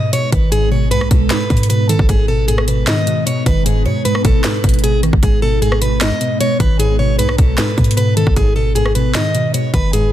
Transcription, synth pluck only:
Already playing: G#2 B2
0.13 B2
0.32 D#3
0.52 G#2
0.72 B2
0.91 G#2
1.11 B2
1.30 G#2
1.50 B2
1.70 B2
1.89 D#3
2.09 G#2
2.29 B2
2.49 G#2
2.68 B2
2.87 G#2
3.07 B2
3.27 B2
3.46 D#3
3.66 G#2
3.85 B2
4.05 G#2
4.25 B2
4.45 G#2
4.64 B2
4.83 B2
5.03 D#3
5.22 G#2
5.43 B2
5.62 G#2
5.82 B2
6.01 G#2
6.21 B2
6.40 B2
6.60 D#3
6.79 G#2
6.99 B2
7.19 G#2
7.39 B2
7.58 G#2
7.78 B2
7.97 B2
8.17 D#3
8.36 G#2
8.56 B2
8.76 G#2
8.96 B2
9.15 G#2
9.34 B2
9.54 B2
9.74 D#3
9.93 G#2

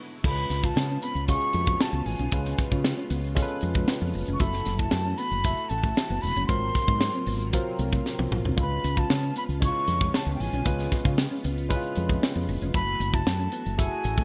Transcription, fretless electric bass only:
0.24 C#2
0.50 C#2
0.76 C#3
1.15 C#2
1.54 F2
1.93 C#2
2.06 A1
2.19 B1
2.32 C#2
2.72 C#3
3.10 C#2
3.63 F2
4.02 F2
4.15 F#1
4.28 F1
4.40 F#1
4.66 F#1
4.92 F#2
5.31 F#1
5.71 A1
6.10 F#1
6.23 E1
6.36 F#1
6.49 G#1
6.88 G#2
7.27 G#1
7.79 C2
8.19 C2
8.31 A#1
8.45 C2
8.57 C#2
8.84 C#2
9.10 C#3
9.49 C#2
9.88 F2
10.26 C#2
10.40 A1
10.53 B1
10.66 C#2
11.05 C#3
11.45 C#2
11.97 F2
12.36 F2
12.48 F#1
12.62 F1
12.74 F#1
13.00 F#1
13.26 F#2
13.66 F#1
14.05 A1

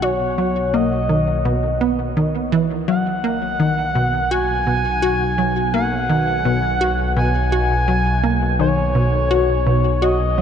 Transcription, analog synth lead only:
0.02 C#5
0.74 D#5
2.88 F#5
4.30 G#5
5.73 F#5
7.16 G#5
8.59 C#5
10.02 D#5

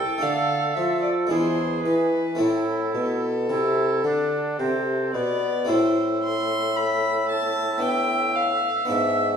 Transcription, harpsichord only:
Already playing: C4 E4 A4
0.18 A3 D4 A4
0.23 D3
0.77 F3
1.27 G#3 D4 E4
1.32 E2
1.86 E3
2.35 A3 C4 E4
2.40 A2
2.95 B2
3.50 C3
4.04 D3
4.60 C3
5.15 B2
5.65 A3 C4 E4
5.69 A2
7.78 B3 D4 B4
8.85 B3 D4 B4
8.90 G#2

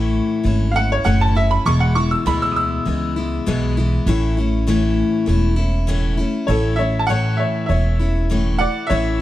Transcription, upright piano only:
Already playing: A5
0.71 F5
0.76 F#5
0.92 C#5
1.05 F#5
1.21 A5
1.36 E5
1.51 B5
1.66 C#6
1.80 F#5
1.95 C#6
2.11 E6
2.27 B5
2.42 E6
2.52 D#6
2.56 E6
6.47 A4 C#5
6.76 C#5 E5
6.99 A5
7.07 C#5 F#5
7.37 C#5 E5
7.66 C#5 E5
8.59 D5 F#5
8.87 C#5 E5

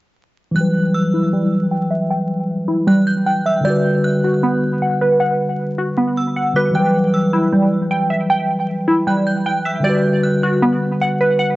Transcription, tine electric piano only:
0.51 E3 G3
0.57 F#3 B4
3.61 D3 G3
3.67 F#4 B4
6.53 D3 G3 F#4
6.58 B4
6.70 E3 G3
6.77 F#3 B4
9.80 D3 G3
9.86 F#4 B4

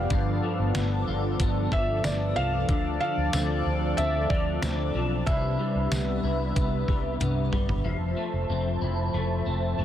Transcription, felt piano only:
Already playing: F5
1.73 E5
2.05 D5
2.36 F5
3.00 F5
3.97 E5
4.30 D5
5.26 E5

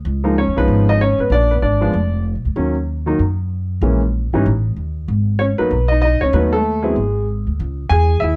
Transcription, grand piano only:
0.24 F3 G#3 A#3 D#4
0.38 C#4 C#5
0.57 F3 G#3 B3 C#4 D#4 B4
0.89 D#4 D#5
1.01 C#4 C#5
1.20 B3 B4
1.32 D4 D5
1.51 B3 B4
1.62 D4 D5
1.81 F3 G#3 B3 D4
2.56 D#3 F#3 A#3 C#4
3.06 D#3 F#3 A#3 D#4
3.82 E3 G#3 A#3 C#4
4.34 E3 G3 C#4 D#4
5.39 C#4 C#5
5.58 F#3 A#3 B3 D#4 B4
5.88 D#4 D#5
6.02 D#4 D#5
6.21 C#4 C#5
6.33 F#3 A3 B3 C#4 D#4 B4
6.53 A3 A4
6.83 F#3 G#3 B3 C4 E4 G#4
7.89 G#4 G#5
8.20 E4 E5

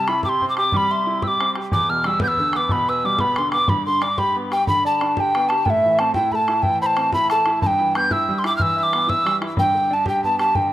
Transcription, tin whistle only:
0.08 B5
0.24 D6
0.29 C6
0.49 D6
0.58 D6
0.73 D6
0.77 B5
0.91 C6
1.23 E6
1.28 D6
1.73 D6
1.90 F6
2.06 E6
2.23 G6
2.28 E6
2.56 D6
2.72 B5
2.89 E6
3.05 D6
3.20 B5
3.38 C6
3.52 D6
3.69 B5
3.86 C6
4.03 D6
4.19 B5
4.53 G5
4.68 B5
4.86 A5
5.17 G5 A5
5.49 A5
5.66 G5
5.70 E5
5.99 A5
6.15 G5
6.32 A5 B5
6.63 G5
6.82 B5
6.86 A5
7.14 B5
7.30 A5
7.62 A5
7.67 G5
7.96 G6
8.12 E6
8.39 C6
8.46 D6
8.57 F6
8.62 E6
8.78 E6
8.83 D6
9.09 E6
9.59 G5
9.93 A5
10.08 G5
10.24 A5
10.40 A5
10.55 G5

